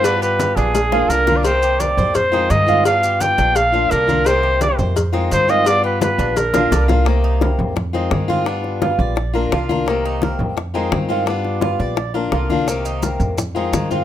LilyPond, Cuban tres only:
\new Staff \with { instrumentName = "Cuban tres" } { \time 4/4 \key c \minor \tempo 4 = 171 d'8 g'4 d'4 f'8 d''8 bes'8~ | bes'8 g'4 c''4 ees'4 f'8 | d'8 g'4 d'4 f'8 d''8 bes'8~ | bes'8 g'4 c''4 ees'4 f'8 |
d'8 g'4 d'4 f'8 d''8 bes'8 | r8 ees'8 bes'8 r4 ees'4 f'8 | d'4 f'8 d''4 bes'8 f'8 bes'8~ | bes'8 ees'8 bes'8 r4 ees'4 f'8 |
d'4 f'8 d''4 bes'8 f'8 bes'8~ | bes'8 ees'8 bes'8 r4 ees'4 f'8 | }